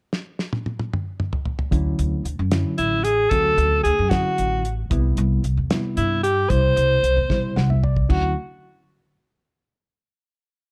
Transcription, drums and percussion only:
0.13 snare medium
0.39 snare medium
0.53 high tom medium
0.66 high tom medium
0.80 high tom medium
0.93 mid tom medium
1.20 mid tom medium
1.33 floor tom medium
1.45 floor tom medium
1.59 floor tom medium
1.72 kick loud
1.72 closed hi-hat medium
1.99 closed hi-hat medium
2.25 closed hi-hat medium
2.51 snare loud
2.51 closed hi-hat medium
2.78 closed hi-hat medium
3.05 closed hi-hat medium
3.31 kick loud
3.31 closed hi-hat medium
3.58 closed hi-hat soft
3.85 closed hi-hat medium
4.11 kick medium
4.11 snare medium
4.11 closed hi-hat medium
4.38 closed hi-hat medium
4.65 closed hi-hat medium
4.91 kick medium
4.91 closed hi-hat medium
5.17 closed hi-hat soft
5.44 closed hi-hat soft
5.71 snare loud
5.71 closed hi-hat medium
5.97 closed hi-hat soft
6.24 closed hi-hat medium
6.50 kick loud
6.50 closed hi-hat medium
6.77 closed hi-hat medium
7.04 closed hi-hat medium
7.30 kick medium
7.30 snare medium
7.57 snare medium
7.70 mid tom medium
7.84 floor tom medium
7.97 kick medium
8.10 kick medium
8.10 crash medium

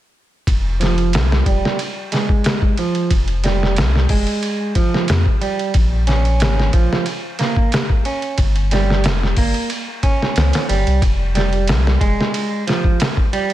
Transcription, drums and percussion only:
0.47 kick loud
0.47 ride medium
0.81 snare soft
0.81 ride medium
0.98 ride soft
1.13 snare loud
1.13 ride medium
1.32 snare soft
1.46 kick medium
1.46 ride medium
1.65 snare medium
1.79 ride medium
2.12 snare soft
2.12 ride medium
2.29 kick medium
2.44 snare loud
2.44 ride medium
2.62 kick medium
2.77 ride medium
2.95 ride soft
3.11 kick medium
3.11 ride medium
3.28 ride soft
3.44 snare medium
3.44 ride medium
3.63 snare soft
3.76 snare loud
3.76 ride medium
3.96 snare soft
4.09 kick medium
4.09 open hi-hat medium
4.27 ride soft
4.43 ride medium
4.75 kick medium
4.75 ride medium
4.94 snare soft
5.08 snare loud
5.08 ride medium
5.26 kick medium
5.42 ride medium
5.59 ride soft
5.74 kick medium
5.74 ride medium
6.07 snare soft
6.07 ride medium
6.25 ride soft
6.40 snare loud
6.40 ride medium
6.59 snare soft
6.73 kick medium
6.73 ride medium
6.93 snare soft
7.06 ride medium
7.39 snare soft
7.39 ride medium
7.56 kick medium
7.72 snare loud
7.72 ride medium
7.90 kick medium
8.05 ride medium
8.22 ride soft
8.38 kick medium
8.38 ride medium
8.56 ride soft
8.71 snare medium
8.71 ride medium
8.90 snare soft
9.04 snare loud
9.04 ride medium
9.23 snare soft
9.37 kick medium
9.37 open hi-hat medium
9.54 ride soft
9.70 ride medium
10.03 kick medium
10.03 ride medium
10.22 snare soft
10.36 snare medium
10.36 ride medium
10.53 snare medium
10.53 ride medium
10.69 ride medium
10.87 ride soft
11.02 kick loud
11.02 ride medium
11.35 snare soft
11.35 ride medium
11.53 ride soft
11.67 snare loud
11.67 ride medium
11.87 snare soft
12.01 kick medium
12.01 ride medium
12.21 snare medium
12.34 ride medium
12.68 snare soft
12.68 ride medium
12.84 kick medium
13.00 snare loud
13.00 ride medium
13.17 kick medium
13.33 ride medium
13.50 ride soft

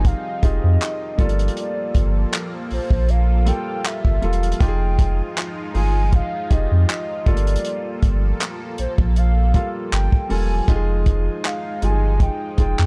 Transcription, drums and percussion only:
0.05 kick loud
0.05 closed hi-hat medium
0.43 kick loud
0.43 closed hi-hat medium
0.81 clap loud
0.81 closed hi-hat medium
1.19 kick loud
1.19 closed hi-hat soft
1.19 open hi-hat medium
1.29 closed hi-hat medium
1.39 closed hi-hat medium
1.48 closed hi-hat medium
1.57 closed hi-hat medium
1.95 kick medium
1.95 closed hi-hat medium
2.33 clap loud
2.33 closed hi-hat medium
2.71 open hi-hat soft
2.91 kick loud
3.09 closed hi-hat medium
3.47 closed hi-hat medium
3.85 clap loud
3.85 closed hi-hat medium
4.05 kick medium
4.22 closed hi-hat soft
4.22 open hi-hat medium
4.33 closed hi-hat soft
4.43 closed hi-hat medium
4.52 closed hi-hat medium
4.61 kick loud
4.61 closed hi-hat medium
4.99 kick medium
4.99 closed hi-hat medium
5.37 clap loud
5.37 closed hi-hat medium
5.75 open hi-hat soft
6.13 kick loud
6.13 closed hi-hat medium
6.51 kick loud
6.51 closed hi-hat medium
6.89 clap loud
6.89 closed hi-hat medium
7.26 kick loud
7.26 closed hi-hat soft
7.26 open hi-hat medium
7.37 closed hi-hat medium
7.47 closed hi-hat medium
7.56 closed hi-hat medium
7.65 closed hi-hat medium
8.02 kick medium
8.02 closed hi-hat medium
8.40 clap loud
8.40 closed hi-hat medium
8.78 closed hi-hat medium
8.98 kick loud
9.16 closed hi-hat medium
9.54 kick loud
9.54 closed hi-hat medium
9.92 clap loud
9.92 closed hi-hat medium
10.12 kick medium
10.30 open hi-hat medium
10.68 kick loud
10.68 closed hi-hat medium
11.06 kick medium
11.06 closed hi-hat medium
11.44 clap loud
11.44 closed hi-hat medium
11.82 closed hi-hat medium
12.20 kick loud
12.20 closed hi-hat medium
12.58 kick loud
12.58 closed hi-hat medium
12.79 clap medium

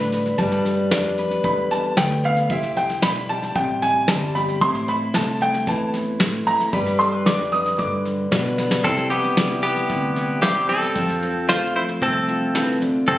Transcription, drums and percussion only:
0.12 snare soft
0.26 snare soft
0.38 kick loud
0.38 snare soft
0.52 snare soft
0.65 snare soft
0.91 snare loud
0.91 hi-hat pedal medium
1.18 snare soft
1.31 snare soft
1.44 kick loud
1.44 snare soft
1.71 snare soft
1.97 snare loud
1.97 hi-hat pedal medium
2.24 snare soft
2.37 snare soft
2.50 kick loud
2.50 snare soft
2.63 snare soft
2.76 snare soft
2.89 snare soft
3.02 snare loud
3.02 hi-hat pedal medium
3.29 snare soft
3.42 snare soft
3.55 kick loud
3.55 snare soft
3.82 snare soft
4.08 snare loud
4.08 hi-hat pedal medium
4.35 snare soft
4.48 snare soft
4.61 kick loud
4.61 snare soft
4.75 snare soft
4.88 snare soft
5.14 snare loud
5.14 hi-hat pedal medium
5.41 snare soft
5.54 snare soft
5.67 kick loud
5.67 snare soft
5.94 snare soft
6.20 snare loud
6.20 hi-hat pedal medium
6.47 snare soft
6.60 snare soft
6.73 kick loud
6.73 snare soft
6.86 snare soft
7.00 snare soft
7.26 snare loud
7.26 hi-hat pedal medium
7.53 snare soft
7.66 snare soft
7.79 kick loud
7.79 snare soft
8.05 snare soft
8.32 snare loud
8.32 hi-hat pedal medium
8.58 snare medium
8.71 snare medium
8.84 kick medium
8.84 snare soft
8.97 snare soft
9.11 snare soft
9.24 snare soft
9.37 snare loud
9.37 hi-hat pedal medium
9.63 snare soft
9.76 snare soft
9.89 kick loud
9.89 snare soft
10.16 snare soft
10.43 snare loud
10.43 hi-hat pedal medium
10.69 snare soft
10.82 snare soft
10.95 kick loud
10.95 snare soft
11.09 snare soft
11.22 snare soft
11.49 snare loud
11.49 hi-hat pedal medium
11.76 snare soft
11.89 snare soft
12.02 kick loud
12.02 snare soft
12.29 snare soft
12.55 snare medium
12.55 hi-hat pedal medium
12.82 snare soft
13.08 kick loud
13.08 snare soft

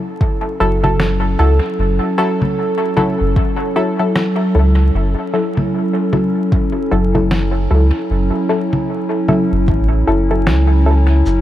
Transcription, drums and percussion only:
0.21 kick medium
0.84 low conga medium
1.00 snare medium
2.42 low conga medium
2.97 low conga medium
3.36 kick loud
4.15 snare medium
5.57 low conga medium
6.13 low conga medium
6.52 kick loud
7.15 low conga medium
7.31 snare medium
8.73 low conga medium
9.28 low conga medium
9.68 kick loud
10.47 snare medium
11.26 cabasa soft

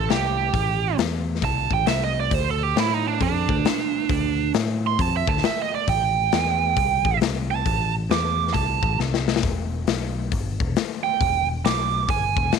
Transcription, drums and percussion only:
0.10 snare medium
0.10 open hi-hat soft
0.54 kick loud
0.54 open hi-hat soft
0.98 snare loud
0.98 open hi-hat medium
1.35 snare soft
1.42 kick loud
1.42 open hi-hat medium
1.71 kick loud
1.86 snare loud
1.86 open hi-hat medium
2.31 kick loud
2.31 open hi-hat medium
2.76 snare loud
2.76 open hi-hat medium
3.21 kick loud
3.21 open hi-hat medium
3.49 kick loud
3.65 snare loud
3.65 open hi-hat medium
4.09 kick loud
4.09 open hi-hat medium
4.54 snare loud
4.54 open hi-hat medium
4.99 kick loud
4.99 open hi-hat medium
5.27 kick loud
5.37 snare soft
5.43 snare loud
5.43 open hi-hat medium
5.88 kick loud
5.88 open hi-hat medium
6.32 snare loud
6.32 open hi-hat medium
6.77 kick loud
6.77 open hi-hat medium
7.05 kick loud
7.21 snare loud
7.21 open hi-hat medium
7.66 kick loud
7.66 open hi-hat medium
8.11 snare loud
8.11 open hi-hat medium
8.48 snare soft
8.54 kick medium
8.54 open hi-hat medium
8.83 kick loud
9.00 snare medium
9.14 snare medium
9.28 snare medium
9.36 snare medium
9.43 kick loud
9.43 open hi-hat medium
9.87 snare loud
9.87 open hi-hat medium
10.32 kick loud
10.32 open hi-hat medium
10.60 kick loud
10.76 snare loud
10.76 open hi-hat medium
11.21 kick loud
11.21 open hi-hat medium
11.65 snare loud
11.65 open hi-hat medium
12.09 kick loud
12.09 open hi-hat medium
12.37 kick loud
12.52 snare loud
12.52 open hi-hat soft

